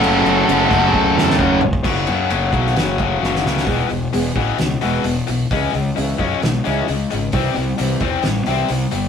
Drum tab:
CC |x-x-x-x---------|x---------------|----------------|----------------|
RD |----------------|--x-x-x-x-x-----|----------------|----------------|
HH |----------------|----------------|o-o-o-o-o-o-o-o-|o-o-o-o-o-o-o-o-|
SD |----------oo----|-------oo---oooo|--------o-------|--------o-------|
T2 |------------o---|----------------|----------------|----------------|
FT |--------------o-|----------------|----------------|----------------|
BD |------o-o---o--o|o-----o---o-----|o-----o---------|o-----o---------|

CC |----------------|
RD |----------------|
HH |o-o-o-o-o-o-o-o-|
SD |--------o-------|
T2 |----------------|
FT |----------------|
BD |o-----o---------|